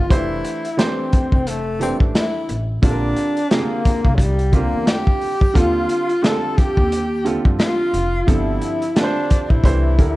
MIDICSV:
0, 0, Header, 1, 6, 480
1, 0, Start_track
1, 0, Key_signature, -1, "major"
1, 0, Tempo, 681818
1, 70, Time_signature, 4, 2, 24, 8
1, 7154, End_track
2, 0, Start_track
2, 0, Title_t, "Tenor saxophone"
2, 0, Program_c, 0, 66
2, 0, Note_on_c, 0, 65, 74
2, 71, Note_off_c, 0, 65, 0
2, 78, Note_on_c, 0, 64, 77
2, 526, Note_off_c, 0, 64, 0
2, 561, Note_on_c, 0, 60, 67
2, 1039, Note_on_c, 0, 57, 75
2, 1050, Note_off_c, 0, 60, 0
2, 1275, Note_off_c, 0, 57, 0
2, 1285, Note_on_c, 0, 60, 81
2, 1390, Note_off_c, 0, 60, 0
2, 1516, Note_on_c, 0, 64, 82
2, 1791, Note_off_c, 0, 64, 0
2, 1993, Note_on_c, 0, 62, 85
2, 2476, Note_on_c, 0, 58, 82
2, 2487, Note_off_c, 0, 62, 0
2, 2916, Note_on_c, 0, 54, 56
2, 2926, Note_off_c, 0, 58, 0
2, 2956, Note_on_c, 0, 55, 75
2, 2966, Note_off_c, 0, 54, 0
2, 3195, Note_on_c, 0, 58, 83
2, 3205, Note_off_c, 0, 55, 0
2, 3426, Note_on_c, 0, 67, 85
2, 3436, Note_off_c, 0, 58, 0
2, 3911, Note_on_c, 0, 65, 85
2, 3922, Note_off_c, 0, 67, 0
2, 4389, Note_on_c, 0, 69, 81
2, 4399, Note_off_c, 0, 65, 0
2, 4626, Note_on_c, 0, 67, 92
2, 4636, Note_off_c, 0, 69, 0
2, 5166, Note_off_c, 0, 67, 0
2, 5346, Note_on_c, 0, 65, 90
2, 5829, Note_on_c, 0, 64, 83
2, 5840, Note_off_c, 0, 65, 0
2, 6306, Note_off_c, 0, 64, 0
2, 6310, Note_on_c, 0, 62, 81
2, 6688, Note_on_c, 0, 64, 79
2, 6698, Note_off_c, 0, 62, 0
2, 7154, Note_off_c, 0, 64, 0
2, 7154, End_track
3, 0, Start_track
3, 0, Title_t, "Trombone"
3, 0, Program_c, 1, 57
3, 0, Note_on_c, 1, 65, 84
3, 78, Note_off_c, 1, 65, 0
3, 84, Note_on_c, 1, 64, 99
3, 529, Note_off_c, 1, 64, 0
3, 566, Note_on_c, 1, 60, 101
3, 1050, Note_on_c, 1, 57, 101
3, 1060, Note_off_c, 1, 60, 0
3, 1280, Note_off_c, 1, 57, 0
3, 1284, Note_on_c, 1, 60, 85
3, 1389, Note_off_c, 1, 60, 0
3, 1524, Note_on_c, 1, 64, 91
3, 1795, Note_off_c, 1, 64, 0
3, 2002, Note_on_c, 1, 62, 96
3, 2485, Note_on_c, 1, 58, 98
3, 2496, Note_off_c, 1, 62, 0
3, 2925, Note_on_c, 1, 54, 61
3, 2935, Note_off_c, 1, 58, 0
3, 2957, Note_on_c, 1, 55, 97
3, 2968, Note_off_c, 1, 54, 0
3, 3204, Note_on_c, 1, 58, 94
3, 3215, Note_off_c, 1, 55, 0
3, 3451, Note_on_c, 1, 67, 113
3, 3461, Note_off_c, 1, 58, 0
3, 3927, Note_on_c, 1, 65, 123
3, 3938, Note_off_c, 1, 67, 0
3, 4403, Note_on_c, 1, 69, 113
3, 4413, Note_off_c, 1, 65, 0
3, 4641, Note_on_c, 1, 67, 115
3, 4651, Note_off_c, 1, 69, 0
3, 5173, Note_off_c, 1, 67, 0
3, 5362, Note_on_c, 1, 65, 110
3, 5843, Note_on_c, 1, 64, 100
3, 5853, Note_off_c, 1, 65, 0
3, 6317, Note_off_c, 1, 64, 0
3, 6325, Note_on_c, 1, 62, 107
3, 6698, Note_on_c, 1, 64, 86
3, 6708, Note_off_c, 1, 62, 0
3, 7154, Note_off_c, 1, 64, 0
3, 7154, End_track
4, 0, Start_track
4, 0, Title_t, "Upright piano"
4, 0, Program_c, 2, 0
4, 66, Note_on_c, 2, 52, 71
4, 70, Note_on_c, 2, 57, 65
4, 72, Note_on_c, 2, 62, 64
4, 76, Note_on_c, 2, 67, 57
4, 77, Note_on_c, 2, 72, 75
4, 450, Note_off_c, 2, 52, 0
4, 451, Note_off_c, 2, 57, 0
4, 453, Note_off_c, 2, 62, 0
4, 455, Note_off_c, 2, 67, 0
4, 455, Note_off_c, 2, 72, 0
4, 543, Note_on_c, 2, 52, 74
4, 546, Note_on_c, 2, 57, 58
4, 549, Note_on_c, 2, 67, 69
4, 551, Note_on_c, 2, 62, 63
4, 554, Note_on_c, 2, 72, 80
4, 1101, Note_off_c, 2, 52, 0
4, 1102, Note_off_c, 2, 57, 0
4, 1104, Note_off_c, 2, 67, 0
4, 1105, Note_off_c, 2, 62, 0
4, 1106, Note_off_c, 2, 72, 0
4, 1262, Note_on_c, 2, 52, 59
4, 1268, Note_on_c, 2, 57, 58
4, 1272, Note_on_c, 2, 62, 59
4, 1273, Note_on_c, 2, 69, 71
4, 1275, Note_on_c, 2, 67, 60
4, 1821, Note_off_c, 2, 52, 0
4, 1824, Note_off_c, 2, 57, 0
4, 1825, Note_off_c, 2, 62, 0
4, 1826, Note_off_c, 2, 69, 0
4, 1827, Note_off_c, 2, 67, 0
4, 1987, Note_on_c, 2, 50, 67
4, 1990, Note_on_c, 2, 55, 62
4, 1992, Note_on_c, 2, 60, 60
4, 1995, Note_on_c, 2, 65, 60
4, 2000, Note_on_c, 2, 69, 62
4, 2047, Note_on_c, 2, 70, 69
4, 2048, Note_off_c, 2, 69, 0
4, 2370, Note_off_c, 2, 50, 0
4, 2372, Note_off_c, 2, 55, 0
4, 2372, Note_off_c, 2, 60, 0
4, 2374, Note_off_c, 2, 65, 0
4, 2400, Note_off_c, 2, 70, 0
4, 2469, Note_on_c, 2, 67, 57
4, 2470, Note_on_c, 2, 48, 56
4, 2475, Note_on_c, 2, 60, 65
4, 2476, Note_on_c, 2, 65, 61
4, 2479, Note_on_c, 2, 68, 84
4, 2514, Note_on_c, 2, 50, 71
4, 2523, Note_off_c, 2, 48, 0
4, 3024, Note_off_c, 2, 67, 0
4, 3027, Note_off_c, 2, 60, 0
4, 3027, Note_off_c, 2, 65, 0
4, 3029, Note_off_c, 2, 68, 0
4, 3046, Note_off_c, 2, 50, 0
4, 3183, Note_on_c, 2, 50, 66
4, 3188, Note_on_c, 2, 55, 62
4, 3190, Note_on_c, 2, 60, 58
4, 3195, Note_on_c, 2, 65, 62
4, 3199, Note_on_c, 2, 67, 72
4, 3741, Note_off_c, 2, 50, 0
4, 3743, Note_off_c, 2, 55, 0
4, 3745, Note_off_c, 2, 60, 0
4, 3747, Note_off_c, 2, 65, 0
4, 3749, Note_off_c, 2, 67, 0
4, 3899, Note_on_c, 2, 50, 74
4, 3904, Note_on_c, 2, 55, 64
4, 3908, Note_on_c, 2, 65, 73
4, 3909, Note_on_c, 2, 60, 67
4, 3910, Note_on_c, 2, 69, 80
4, 4286, Note_off_c, 2, 50, 0
4, 4288, Note_off_c, 2, 55, 0
4, 4291, Note_off_c, 2, 60, 0
4, 4291, Note_off_c, 2, 65, 0
4, 4291, Note_off_c, 2, 69, 0
4, 4381, Note_on_c, 2, 50, 64
4, 4386, Note_on_c, 2, 55, 63
4, 4386, Note_on_c, 2, 60, 64
4, 4390, Note_on_c, 2, 65, 67
4, 4393, Note_on_c, 2, 68, 62
4, 4439, Note_on_c, 2, 69, 76
4, 4445, Note_off_c, 2, 68, 0
4, 4940, Note_off_c, 2, 50, 0
4, 4942, Note_off_c, 2, 55, 0
4, 4942, Note_off_c, 2, 60, 0
4, 4944, Note_off_c, 2, 65, 0
4, 4969, Note_off_c, 2, 69, 0
4, 5101, Note_on_c, 2, 50, 63
4, 5103, Note_on_c, 2, 55, 58
4, 5105, Note_on_c, 2, 60, 67
4, 5110, Note_on_c, 2, 65, 66
4, 5113, Note_on_c, 2, 69, 72
4, 5660, Note_off_c, 2, 50, 0
4, 5661, Note_off_c, 2, 55, 0
4, 5662, Note_off_c, 2, 60, 0
4, 5665, Note_off_c, 2, 65, 0
4, 5666, Note_off_c, 2, 69, 0
4, 5822, Note_on_c, 2, 50, 77
4, 5827, Note_on_c, 2, 55, 65
4, 5830, Note_on_c, 2, 60, 63
4, 5832, Note_on_c, 2, 53, 69
4, 5836, Note_on_c, 2, 69, 78
4, 6208, Note_off_c, 2, 50, 0
4, 6210, Note_off_c, 2, 55, 0
4, 6212, Note_off_c, 2, 60, 0
4, 6213, Note_off_c, 2, 53, 0
4, 6215, Note_off_c, 2, 69, 0
4, 6306, Note_on_c, 2, 50, 65
4, 6310, Note_on_c, 2, 55, 61
4, 6312, Note_on_c, 2, 60, 59
4, 6313, Note_on_c, 2, 65, 59
4, 6317, Note_on_c, 2, 71, 56
4, 6362, Note_on_c, 2, 72, 79
4, 6367, Note_off_c, 2, 71, 0
4, 6785, Note_off_c, 2, 72, 0
4, 6787, Note_on_c, 2, 52, 79
4, 6787, Note_on_c, 2, 57, 66
4, 6788, Note_off_c, 2, 50, 0
4, 6788, Note_on_c, 2, 62, 66
4, 6790, Note_off_c, 2, 55, 0
4, 6791, Note_off_c, 2, 60, 0
4, 6792, Note_off_c, 2, 65, 0
4, 6794, Note_on_c, 2, 67, 63
4, 6796, Note_on_c, 2, 72, 82
4, 6988, Note_off_c, 2, 52, 0
4, 6988, Note_off_c, 2, 57, 0
4, 6989, Note_off_c, 2, 62, 0
4, 6992, Note_off_c, 2, 67, 0
4, 6993, Note_off_c, 2, 72, 0
4, 7024, Note_on_c, 2, 50, 65
4, 7027, Note_on_c, 2, 69, 62
4, 7029, Note_on_c, 2, 67, 56
4, 7030, Note_on_c, 2, 62, 63
4, 7034, Note_on_c, 2, 70, 69
4, 7154, Note_off_c, 2, 50, 0
4, 7154, Note_off_c, 2, 62, 0
4, 7154, Note_off_c, 2, 67, 0
4, 7154, Note_off_c, 2, 69, 0
4, 7154, Note_off_c, 2, 70, 0
4, 7154, End_track
5, 0, Start_track
5, 0, Title_t, "Upright bass"
5, 0, Program_c, 3, 32
5, 0, Note_on_c, 3, 31, 77
5, 73, Note_off_c, 3, 31, 0
5, 73, Note_on_c, 3, 29, 98
5, 278, Note_off_c, 3, 29, 0
5, 933, Note_on_c, 3, 29, 78
5, 1344, Note_off_c, 3, 29, 0
5, 1408, Note_on_c, 3, 33, 76
5, 1495, Note_off_c, 3, 33, 0
5, 1755, Note_on_c, 3, 33, 88
5, 1959, Note_off_c, 3, 33, 0
5, 1991, Note_on_c, 3, 34, 107
5, 2197, Note_off_c, 3, 34, 0
5, 2851, Note_on_c, 3, 36, 96
5, 3263, Note_off_c, 3, 36, 0
5, 3329, Note_on_c, 3, 40, 80
5, 3416, Note_off_c, 3, 40, 0
5, 3908, Note_on_c, 3, 39, 99
5, 4116, Note_off_c, 3, 39, 0
5, 4768, Note_on_c, 3, 39, 86
5, 5181, Note_off_c, 3, 39, 0
5, 5246, Note_on_c, 3, 43, 94
5, 5334, Note_off_c, 3, 43, 0
5, 5585, Note_on_c, 3, 29, 86
5, 5794, Note_off_c, 3, 29, 0
5, 5829, Note_on_c, 3, 31, 94
5, 6036, Note_off_c, 3, 31, 0
5, 6689, Note_on_c, 3, 34, 77
5, 6776, Note_off_c, 3, 34, 0
5, 6783, Note_on_c, 3, 36, 102
5, 7032, Note_off_c, 3, 36, 0
5, 7032, Note_on_c, 3, 38, 87
5, 7154, Note_off_c, 3, 38, 0
5, 7154, End_track
6, 0, Start_track
6, 0, Title_t, "Drums"
6, 74, Note_on_c, 9, 36, 117
6, 75, Note_on_c, 9, 42, 84
6, 144, Note_off_c, 9, 36, 0
6, 145, Note_off_c, 9, 42, 0
6, 313, Note_on_c, 9, 42, 78
6, 384, Note_off_c, 9, 42, 0
6, 456, Note_on_c, 9, 42, 51
6, 526, Note_off_c, 9, 42, 0
6, 554, Note_on_c, 9, 42, 92
6, 557, Note_on_c, 9, 38, 109
6, 625, Note_off_c, 9, 42, 0
6, 628, Note_off_c, 9, 38, 0
6, 793, Note_on_c, 9, 42, 75
6, 797, Note_on_c, 9, 36, 100
6, 863, Note_off_c, 9, 42, 0
6, 867, Note_off_c, 9, 36, 0
6, 931, Note_on_c, 9, 36, 87
6, 1001, Note_off_c, 9, 36, 0
6, 1034, Note_on_c, 9, 42, 79
6, 1104, Note_off_c, 9, 42, 0
6, 1274, Note_on_c, 9, 42, 64
6, 1344, Note_off_c, 9, 42, 0
6, 1410, Note_on_c, 9, 36, 79
6, 1481, Note_off_c, 9, 36, 0
6, 1514, Note_on_c, 9, 42, 88
6, 1516, Note_on_c, 9, 38, 117
6, 1585, Note_off_c, 9, 42, 0
6, 1586, Note_off_c, 9, 38, 0
6, 1753, Note_on_c, 9, 42, 63
6, 1823, Note_off_c, 9, 42, 0
6, 1990, Note_on_c, 9, 36, 110
6, 1992, Note_on_c, 9, 42, 84
6, 2061, Note_off_c, 9, 36, 0
6, 2062, Note_off_c, 9, 42, 0
6, 2228, Note_on_c, 9, 42, 75
6, 2298, Note_off_c, 9, 42, 0
6, 2371, Note_on_c, 9, 42, 46
6, 2441, Note_off_c, 9, 42, 0
6, 2470, Note_on_c, 9, 42, 82
6, 2473, Note_on_c, 9, 38, 107
6, 2540, Note_off_c, 9, 42, 0
6, 2543, Note_off_c, 9, 38, 0
6, 2712, Note_on_c, 9, 42, 79
6, 2714, Note_on_c, 9, 36, 97
6, 2782, Note_off_c, 9, 42, 0
6, 2784, Note_off_c, 9, 36, 0
6, 2848, Note_on_c, 9, 36, 85
6, 2919, Note_off_c, 9, 36, 0
6, 2942, Note_on_c, 9, 36, 103
6, 2951, Note_on_c, 9, 42, 78
6, 3012, Note_off_c, 9, 36, 0
6, 3022, Note_off_c, 9, 42, 0
6, 3090, Note_on_c, 9, 42, 43
6, 3160, Note_off_c, 9, 42, 0
6, 3188, Note_on_c, 9, 36, 87
6, 3189, Note_on_c, 9, 42, 55
6, 3259, Note_off_c, 9, 36, 0
6, 3259, Note_off_c, 9, 42, 0
6, 3429, Note_on_c, 9, 42, 94
6, 3431, Note_on_c, 9, 38, 112
6, 3500, Note_off_c, 9, 42, 0
6, 3501, Note_off_c, 9, 38, 0
6, 3569, Note_on_c, 9, 36, 93
6, 3640, Note_off_c, 9, 36, 0
6, 3670, Note_on_c, 9, 46, 49
6, 3740, Note_off_c, 9, 46, 0
6, 3811, Note_on_c, 9, 36, 83
6, 3881, Note_off_c, 9, 36, 0
6, 3910, Note_on_c, 9, 36, 102
6, 3914, Note_on_c, 9, 42, 88
6, 3980, Note_off_c, 9, 36, 0
6, 3984, Note_off_c, 9, 42, 0
6, 4148, Note_on_c, 9, 42, 70
6, 4218, Note_off_c, 9, 42, 0
6, 4290, Note_on_c, 9, 42, 44
6, 4361, Note_off_c, 9, 42, 0
6, 4393, Note_on_c, 9, 42, 88
6, 4396, Note_on_c, 9, 38, 116
6, 4463, Note_off_c, 9, 42, 0
6, 4466, Note_off_c, 9, 38, 0
6, 4631, Note_on_c, 9, 42, 73
6, 4633, Note_on_c, 9, 36, 101
6, 4701, Note_off_c, 9, 42, 0
6, 4703, Note_off_c, 9, 36, 0
6, 4768, Note_on_c, 9, 36, 87
6, 4838, Note_off_c, 9, 36, 0
6, 4872, Note_on_c, 9, 42, 77
6, 4942, Note_off_c, 9, 42, 0
6, 5109, Note_on_c, 9, 42, 61
6, 5180, Note_off_c, 9, 42, 0
6, 5246, Note_on_c, 9, 36, 90
6, 5316, Note_off_c, 9, 36, 0
6, 5347, Note_on_c, 9, 42, 85
6, 5349, Note_on_c, 9, 38, 111
6, 5418, Note_off_c, 9, 42, 0
6, 5419, Note_off_c, 9, 38, 0
6, 5589, Note_on_c, 9, 42, 65
6, 5659, Note_off_c, 9, 42, 0
6, 5829, Note_on_c, 9, 36, 123
6, 5830, Note_on_c, 9, 42, 85
6, 5899, Note_off_c, 9, 36, 0
6, 5900, Note_off_c, 9, 42, 0
6, 6065, Note_on_c, 9, 42, 67
6, 6136, Note_off_c, 9, 42, 0
6, 6209, Note_on_c, 9, 42, 50
6, 6279, Note_off_c, 9, 42, 0
6, 6308, Note_on_c, 9, 42, 82
6, 6312, Note_on_c, 9, 38, 123
6, 6379, Note_off_c, 9, 42, 0
6, 6382, Note_off_c, 9, 38, 0
6, 6550, Note_on_c, 9, 42, 85
6, 6554, Note_on_c, 9, 36, 100
6, 6620, Note_off_c, 9, 42, 0
6, 6624, Note_off_c, 9, 36, 0
6, 6689, Note_on_c, 9, 36, 83
6, 6760, Note_off_c, 9, 36, 0
6, 6784, Note_on_c, 9, 36, 89
6, 6794, Note_on_c, 9, 42, 75
6, 6854, Note_off_c, 9, 36, 0
6, 6864, Note_off_c, 9, 42, 0
6, 7031, Note_on_c, 9, 36, 88
6, 7032, Note_on_c, 9, 42, 57
6, 7101, Note_off_c, 9, 36, 0
6, 7103, Note_off_c, 9, 42, 0
6, 7154, End_track
0, 0, End_of_file